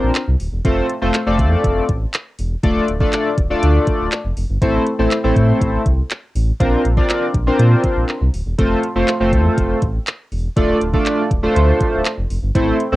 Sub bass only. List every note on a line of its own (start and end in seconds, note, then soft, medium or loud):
0.03 0.11 A#1 loud
0.28 0.36 C2 medium
0.40 0.48 D1 medium
0.53 0.61 E1 loud
0.65 0.81 F1 loud
1.02 1.10 F1 loud
1.27 1.41 F1 loud
1.39 1.56 F2 loud
1.64 1.81 F1 loud
1.89 2.05 A1 medium
2.39 2.55 E1 medium
2.63 2.80 D1 loud
2.88 3.05 D1 loud
3.38 3.54 D1 loud
3.63 3.79 D2 loud
4.00 4.08 D1 loud
4.25 4.33 F1 medium
4.37 4.45 F1 loud
4.50 4.58 G1 medium
4.62 4.78 A1 loud
4.99 5.07 A1 loud
5.24 5.32 A1 loud
5.36 5.52 A2 loud
5.61 5.77 A1 loud
5.86 6.02 C2 medium
6.35 6.52 A1 loud
6.60 6.76 A#1 loud
6.85 7.01 A#1 loud
7.34 7.51 A#1 medium
7.59 7.76 A#2 loud
7.96 8.05 A#1 loud
8.21 8.29 C2 medium
8.34 8.42 D1 medium
8.46 8.54 E1 loud
8.59 8.75 F1 loud
8.95 9.04 F1 loud
9.20 9.34 F1 loud
9.33 9.49 F2 loud
9.58 9.74 F1 loud
9.82 9.99 A1 medium
10.32 10.48 E1 medium
10.57 10.73 D1 loud
10.82 10.98 D1 loud
11.31 11.47 D1 loud
11.56 11.72 D2 loud
11.93 12.01 D1 loud
12.18 12.26 F1 medium
12.30 12.39 F1 medium
12.43 12.51 G1 medium
12.55 12.72 A1 loud
12.92 12.96 A1 loud